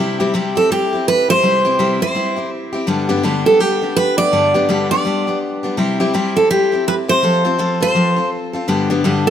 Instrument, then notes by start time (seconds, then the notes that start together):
steel-string acoustic guitar
Already playing: C3 G3
0.00 C4 E4 G4
0.20 C3 G3 C4 E4 G4
0.34 C3 G3 C4 E4 G4
0.55 C4 E4 G4 A4
0.70 G3 C4 E4 G4
0.93 C4 E4 G4
1.08 B4
1.29 C4 E4 G4 C5
1.43 C3 G3 C4 E4 G4
1.65 C3 G3 C4 E4 G4
1.79 C3 G3 C4 E4 G4
2.00 C4 E4 G4 C5
2.15 G3 C4 E4 G4
2.36 C4 E4 G4
2.73 C4 E4 G4
2.87 G2 D3 G3 B3 D4 G4
3.09 G2 D3 G3 B3 D4 G4
3.23 G2 D3 G3 B3 D4 G4
3.45 G3 B3 D4 G4 A4
3.60 G3 B3 D4 G4
3.82 G3 B3 D4 G4
3.96 B4
4.18 G3 B3 D4 G4 D5
4.32 G2 D3 G3 B3 D4 G4
4.54 G2 D3 G3 B3 D4 G4
4.69 G2 D3 G3 B3 D4 G4
4.91 G3 B3 D4 G4 D5
5.05 G3 B3 D4 G4
5.27 G3 B3 D4 G4
5.63 G3 B3 D4 G4
5.77 C3 G3 C4 E4 G4
6.00 C3 G3 C4 E4 G4
6.13 C3 G3 C4 E4 G4
6.36 C4 E4 G4 A4
6.50 G3 C4 E4 G4
6.72 C4 E4 G4
6.88 B4
7.08 C4 E4 G4 C5
7.23 F3 C4 F4 A4
7.45 F3 C4 F4 A4
7.59 F3 C4 F4 A4
7.80 C4 F4 A4 C5
7.95 F3 C4 F4 A4
8.16 C4 F4 A4
8.53 C4 F4 A4
8.68 G2 D3 G3 B3 D4 G4
8.90 G2 D3 G3 B3 D4 G4
9.04 G2 D3 G3 B3 D4 G4
9.26 D4 G4